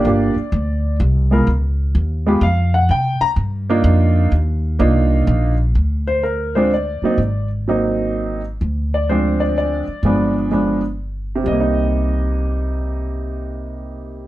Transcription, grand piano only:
Already playing: D5
0.05 A#3 D4 F4 G4
1.31 G#3 B3 F4 A#4
2.27 G#3 B3 F4 G4
2.43 F5
2.74 F#5
2.91 G5
3.21 A#5
3.70 A#3 D4 D#4 F4
4.79 A#3 D4 D#4 F4
6.07 C5
6.23 A#4
6.55 G#3 C4 D4 F4 C5
6.74 D5
7.04 F#3 A#3 C4 D#4
7.68 F#3 A#3 C4 D#4
8.94 D5
9.09 F3 G#3 C4 D4 C5
9.40 D5
9.58 D5
10.05 F3 G#3 B3 D4
10.51 F3 G#3 B3 D4
11.35 C3
11.44 G3 D#5
11.52 A#3
11.60 D#4

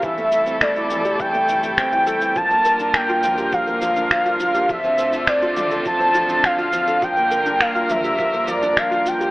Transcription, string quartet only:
0.03 C3 G3 A3 E4 A4
2.36 D3 A#3 F4 A#4
4.69 A3 C4 A4
7.02 G3 A#3 A#4

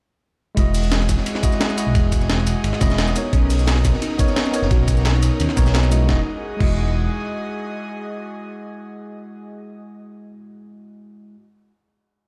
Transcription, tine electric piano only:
0.55 G#3 E4 F#4
0.59 D#5
1.42 G#3 E4 F#4 D#5
1.75 G#3 E4 F#4
1.80 D#5
2.80 G#3 E4 F#4 D#5
3.13 B3 D#4 A#4
3.18 C#5
4.18 B3 D#4 A#4 C#5
4.51 B3 D#4 A#4
4.56 C#5
5.56 B3 D#4 A#4 C#5
5.90 G#3 E4 F#4 D#5
6.05 G#3 E4
6.10 F#4 D#5
6.57 G#3 E4
6.62 F#4 D#5

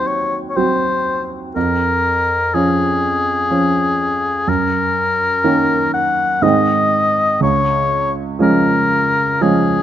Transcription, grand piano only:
Already playing: D#2 F#3 C4 F#4
0.56 F#3 C4 F#4
1.56 F2
2.54 F3 C#4
3.50 F3 C#4
4.48 F#2
5.44 D#3 A#3 C#4
6.42 G#2 D#3 G#3 C4
7.40 C#2
8.39 F3 G#3 C#4
9.41 F3 G#3 C#4

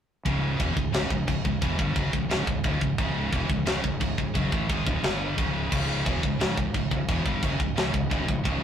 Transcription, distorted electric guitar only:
0.25 C#2 G#2 C#3
0.59 E2 B2 E3
0.75 C#2 G#2
0.93 C#2 G#2 C#3
1.10 C#2 G#2
1.27 C#2 G#2
1.44 C#2 G#2
1.61 E2 B2 E3
1.77 G2 D3 G3
1.94 F#2 C#3 F#3
2.12 C#2 G#2
2.30 C#2 G#2 C#3
2.47 C#2 G#2
2.64 D2 A2 D3
2.81 C#2 G#2
2.98 C#2 G#2 C#3
3.31 E2 B2 E3
3.49 C#2 G#2
3.65 C#2 G#2 C#3
3.84 C#2 G#2
4.00 C#2 G#2
4.18 C#2 G#2
4.34 F#2 C#3 F#3
4.51 A2 E3 A3
4.68 G#2 D#3 G#3
4.85 D2 A2 D3
5.03 G2 D3 G3
5.37 C#2 G#2 C#3
5.71 C#2 G#2 C#3
6.05 E2 B2 E3
6.23 C#2 G#2
6.39 C#2 G#2 C#3
6.57 C#2 G#2
6.74 C#2 G#2
6.91 C#2 G#2
7.08 E2 B2 E3
7.25 G2 D3 G3
7.42 F#2 C#3 F#3
7.58 C#2 G#2
7.76 C#2 G#2 C#3
7.93 C#2 G#2
8.10 D2 A2 D3
8.26 C#2 G#2
8.44 C#2 G#2 C#3

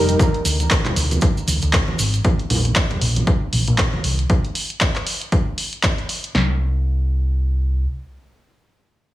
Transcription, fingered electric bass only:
Already playing: F1
0.45 D2
0.96 D2
1.48 D2
1.63 D2
1.99 G#1
2.50 A#1
3.01 A#1
3.53 A#1
3.68 A#1
4.04 C2
6.35 C2

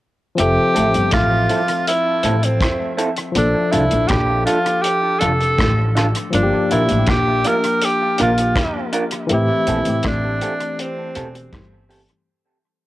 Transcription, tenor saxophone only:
0.40 G4
1.13 F4
1.87 E4
2.45 C4
3.38 D4
3.71 E4
4.08 G4
4.46 F4
4.82 G4
5.20 A4
6.34 D4
6.71 E4
7.09 G4
7.47 A#4
7.84 G4
8.22 F4
9.34 E4
10.07 D4
10.80 C4

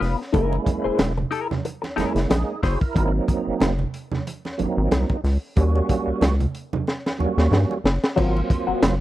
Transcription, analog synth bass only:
0.01 F1
0.34 F#1
0.85 E1
1.00 E1
1.97 F#1
2.15 F#1
2.30 A#1
2.63 F#1
2.96 G#1
3.47 F#1
3.61 F#1
4.60 G#1
4.77 G#1
4.92 C2
5.24 C#2
5.57 D#2
6.07 C#2
6.22 C#2
7.20 D#2
7.38 D#2
7.51 G2
7.84 F#1
8.18 G#1
8.68 F#1
8.83 F#1

